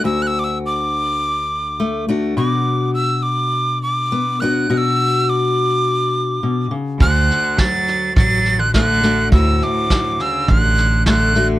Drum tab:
SD |--------|--------|--------|oooooooo|
BD |--------|--------|--------|o-o-o-o-|

SD |oooooooo|
BD |o-o-o-o-|